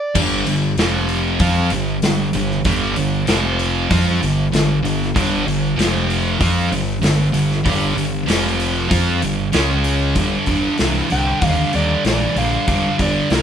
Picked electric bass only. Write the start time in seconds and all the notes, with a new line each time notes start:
0.16 G1
0.47 G1
0.78 F1
1.41 F2
1.72 G1
2.03 G1
2.35 G1
2.65 G1
2.97 G1
3.28 F1
3.91 F2
4.23 G1
4.53 G1
4.84 G1
5.16 G1
5.47 G1
5.78 F1
6.41 F2
6.72 G1
7.02 G1
7.33 G1
7.66 G1
7.96 G1
8.28 F1
8.91 F2
9.23 G1
9.55 C#2
10.16 G1
10.47 G1
10.81 C2
11.12 C2
11.42 D#2
11.75 D#2
12.05 A#1
12.36 A#1
12.68 G1
13.00 G1
13.31 C2